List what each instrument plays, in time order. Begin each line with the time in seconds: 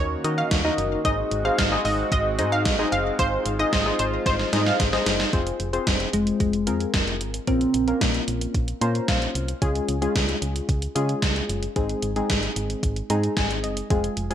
Already playing: fm bass D#2, analog synth pad D#3 A#3 C#4 F#4, synth keys D#4 F#4 A#4 D#5
0.24 fm bass D#3, synth keys D#4 F#4 A#4 D#5, closed hi-hat
0.38 synth pluck F5
0.51 fm bass D#2, kick, snare, closed hi-hat
0.65 synth keys D#4 F#4 A#4 D#5
0.78 fm bass F#1, closed hi-hat
1.05 fm bass G#1, analog synth pad G#3 C4 F#4, synth keys D#4 G#4 C5 D#5, synth pluck D#5, kick, closed hi-hat
1.31 fm bass G#1, closed hi-hat
1.45 synth keys D#4 G#4 C5 F5, synth pluck F5
1.58 fm bass G#1, synth pluck F5, kick, snare, closed hi-hat
1.72 synth keys D#4 G#4 C5 D#5
1.85 fm bass G#1, synth pluck D#5, open hi-hat
2.12 fm bass G#1, synth pluck D#5, kick, closed hi-hat
2.39 fm bass G#2, synth keys D#4 G#4 C5 D#5, closed hi-hat
2.52 synth pluck F5
2.65 fm bass G#1, kick, snare, closed hi-hat
2.79 synth keys D#4 G#4 C5 D#5
2.92 fm bass F#1, synth pluck F5, closed hi-hat
3.19 fm bass G#1, synth keys D#4 G#4 C5 F5, analog synth pad F4, synth pluck C5, kick, closed hi-hat
3.46 fm bass G#1, closed hi-hat
3.59 synth keys D#4 G#4 C5 D#5, synth pluck D#5
3.73 fm bass G#1, synth pluck D#5, kick, snare, closed hi-hat
3.86 synth keys D#4 G#4 C5 D#5
3.99 fm bass G#1, synth pluck C5, closed hi-hat
4.26 fm bass G#1, synth pluck C5, kick, snare, closed hi-hat
4.39 snare
4.53 fm bass G#2, synth keys D#4 G#4 C5 D#5, snare, closed hi-hat
4.66 synth pluck F5, snare
4.80 fm bass G#1, kick, snare, closed hi-hat
4.93 synth keys D#4 G#4 C5 D#5, snare
5.06 fm bass F#1, snare, closed hi-hat
5.20 snare
5.33 fm bass F1, synth keys C4 F4 G#4 C5, kick, closed hi-hat
5.47 closed hi-hat
5.60 fm bass F1, closed hi-hat
5.73 synth keys C4 F4 G#4 C5, closed hi-hat
5.87 fm bass F1, kick, snare, closed hi-hat
6.00 closed hi-hat
6.13 fm bass F1, soft synth lead G#3, closed hi-hat
6.27 closed hi-hat
6.40 fm bass F1, soft synth lead G#3, kick, closed hi-hat
6.53 closed hi-hat
6.67 fm bass F2, synth keys C4 F4 G#4 A#4, closed hi-hat
6.80 closed hi-hat
6.94 fm bass F1, kick, snare, closed hi-hat
7.08 closed hi-hat
7.21 fm bass G#1, closed hi-hat
7.34 closed hi-hat
7.47 fm bass A#1, synth keys C#3 A#3 F4 A#4, soft synth lead C4, kick, closed hi-hat
7.61 closed hi-hat
7.74 fm bass A#1, closed hi-hat
7.88 synth keys A#3 C#4 F4 A#4, closed hi-hat
8.01 fm bass A#1, soft synth lead A#3, kick, snare, closed hi-hat
8.14 closed hi-hat
8.28 fm bass A#1, closed hi-hat
8.41 closed hi-hat
8.54 fm bass A#1, kick, closed hi-hat
8.68 closed hi-hat
8.81 fm bass A#2, synth keys A#3 C#4 F4 C5 A#5, closed hi-hat
8.95 closed hi-hat
9.08 fm bass A#1, synth keys F5, kick, snare, closed hi-hat
9.22 closed hi-hat
9.35 fm bass C2, closed hi-hat
9.48 closed hi-hat
9.62 fm bass C#2, synth keys G#3 C#4 F4 G#4, kick, closed hi-hat
9.75 closed hi-hat
9.88 fm bass C#2, closed hi-hat
10.02 synth keys G#3 C#4 F4 G#4, closed hi-hat
10.16 fm bass C#2, kick, snare, closed hi-hat
10.29 closed hi-hat
10.42 fm bass C#2, closed hi-hat
10.56 closed hi-hat
10.69 fm bass C#2, kick, closed hi-hat
10.82 closed hi-hat
10.95 fm bass C#3, synth keys G#3 C#4 F4 G#4, closed hi-hat
11.09 closed hi-hat
11.22 fm bass C#2, kick, snare, closed hi-hat
11.36 closed hi-hat
11.49 fm bass F#1, closed hi-hat
11.63 closed hi-hat
11.76 fm bass G#1, synth keys G#3 C4 D#4 G#4, kick, closed hi-hat
11.89 closed hi-hat
12.02 fm bass G#1, closed hi-hat
12.16 synth keys G#3 C4 D#4 G#4, closed hi-hat
12.30 fm bass G#1, kick, snare, closed hi-hat
12.43 closed hi-hat
12.56 fm bass G#1, closed hi-hat
12.70 closed hi-hat
12.83 fm bass G#1, kick, closed hi-hat
12.96 closed hi-hat
13.10 fm bass G#2, synth keys G#3 C4 D#4 G#4 A#5, closed hi-hat
13.23 closed hi-hat
13.37 fm bass G#1, synth keys G#5, kick, snare, closed hi-hat
13.51 closed hi-hat
13.63 fm bass F#1, synth keys D#5, closed hi-hat
13.77 closed hi-hat
13.90 fm bass F1, synth keys G#3 C4 F4 G#4, kick, closed hi-hat
14.04 closed hi-hat
14.17 fm bass F1, closed hi-hat
14.30 synth keys G#3 C4 F4 G#4, closed hi-hat